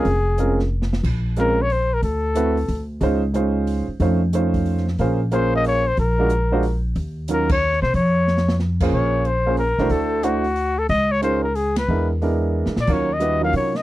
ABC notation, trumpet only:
X:1
M:3/4
L:1/8
Q:"Swing" 1/4=182
K:Bbm
V:1 name="Trumpet"
A4 z2 | z2 B d c B | =A4- A z | z6 |
z6 | z2 c e d c | B4- B z | z2 B d2 c |
d4 z2 | d2 c2 B2 | =A2 ^F3 A | e d c B A _c- |
_c z4 =d | d e2 f d e |]